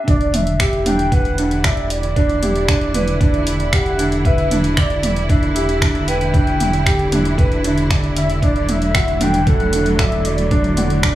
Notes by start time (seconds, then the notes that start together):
Already playing: E5
0.08 E1 D3 D4 D5, kick, closed hi-hat
0.21 closed hi-hat
0.34 E5, closed hi-hat, mid tom
0.47 closed hi-hat
0.60 E4 G4, finger snap, kick, closed hi-hat
0.73 closed hi-hat
0.86 D4 G5, closed hi-hat, mid tom
0.99 closed hi-hat
1.12 B4 F#5, kick, closed hi-hat
1.25 closed hi-hat
1.38 D4, closed hi-hat
1.51 closed hi-hat
1.64 D5 E5, finger snap, kick, closed hi-hat
1.77 closed hi-hat
1.90 D5, closed hi-hat
2.03 closed hi-hat
2.16 D4, kick, closed hi-hat
2.29 closed hi-hat
2.42 G4, closed hi-hat, mid tom
2.56 closed hi-hat
2.68 D4, finger snap, kick, closed hi-hat
2.81 closed hi-hat
2.94 B4, closed hi-hat, mid tom
3.08 closed hi-hat
3.21 D4, kick, closed hi-hat
3.34 closed hi-hat
3.47 closed hi-hat
3.60 closed hi-hat
3.73 G4 F#5, finger snap, kick, closed hi-hat
3.86 closed hi-hat
3.99 D4, closed hi-hat
4.12 closed hi-hat
4.25 B4 E5, kick, closed hi-hat
4.38 closed hi-hat
4.51 D4, closed hi-hat, mid tom
4.64 closed hi-hat
4.77 D5, finger snap, kick, closed hi-hat
4.90 closed hi-hat
5.03 closed hi-hat, mid tom
5.16 closed hi-hat
5.29 D4 E5, kick, closed hi-hat
5.43 closed hi-hat
5.55 G4, closed hi-hat
5.69 closed hi-hat
5.81 D4, finger snap, kick, closed hi-hat
5.95 closed hi-hat
6.08 B4 G5, closed hi-hat
6.21 closed hi-hat
6.34 D4, kick, closed hi-hat
6.47 closed hi-hat
6.60 closed hi-hat, mid tom
6.73 closed hi-hat
6.86 G4, finger snap, kick, closed hi-hat
6.99 closed hi-hat
7.12 D4, closed hi-hat, mid tom
7.25 closed hi-hat
7.38 B4, kick, closed hi-hat
7.52 closed hi-hat
7.64 D4, closed hi-hat
7.78 closed hi-hat
7.90 D5, finger snap, kick, closed hi-hat
8.04 closed hi-hat
8.17 E5, closed hi-hat
8.30 closed hi-hat
8.42 E1 D4 D5, kick, closed hi-hat
8.56 F#3, closed hi-hat
8.69 E5, closed hi-hat, mid tom
8.79 A3, closed hi-hat
8.95 F#4, finger snap, kick, closed hi-hat
9.08 closed hi-hat
9.21 D4 G5, closed hi-hat, mid tom
9.34 closed hi-hat
9.47 A4 F#5, kick, closed hi-hat
9.60 closed hi-hat
9.73 D4, closed hi-hat
9.86 closed hi-hat
9.99 D5 E5, finger snap, kick, closed hi-hat
10.12 closed hi-hat
10.25 D5, closed hi-hat
10.38 closed hi-hat
10.51 D4, kick, closed hi-hat
10.64 closed hi-hat
10.77 F#4, closed hi-hat, mid tom
10.90 closed hi-hat
11.03 D4, finger snap, kick, closed hi-hat